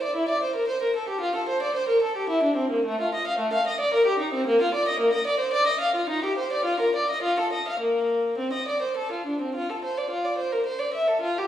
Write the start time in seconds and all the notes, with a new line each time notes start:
0.03 D5
0.15 E4
0.29 D5
0.43 C5
0.55 A#4
0.68 C5
0.82 A#4
0.96 A4
1.09 G4
1.21 F4
1.35 A4
1.49 C5
1.62 D5
1.74 C5
1.89 A#4
2.02 A4
2.16 G4
2.29 E4
2.43 D4
2.56 C4
2.70 A#3
2.85 A3
3.01 F4
3.14 D#5
3.27 F5
3.39 A3
3.53 F5
3.67 D#5
3.80 D5
3.94 A#4
4.06 G4
4.19 D#4
4.34 C4
4.46 A#3
4.61 F4
4.74 D5
4.88 D#5
5.00 A#3
5.13 D#5
5.27 D5
5.40 C5
5.53 D5
5.67 D#5
5.81 F5
5.96 F4
6.10 D#4
6.24 G4
6.38 C5
6.53 D5
6.65 F4
6.80 A#4
6.96 D5
7.10 D#5
7.22 F4
7.39 A4
7.53 D#5
7.68 F5
7.79 A#3
8.38 C4
8.53 D#5
8.68 D5
8.82 C5
8.97 A4
9.12 F4
9.27 D4
9.41 C4
9.55 F4
9.70 A4
9.84 C5
9.98 D5
10.10 F4
10.24 D5
10.38 C5
10.52 A#4
10.66 C5
10.79 D5
10.94 E5
11.08 A4
11.21 F4
11.38 G4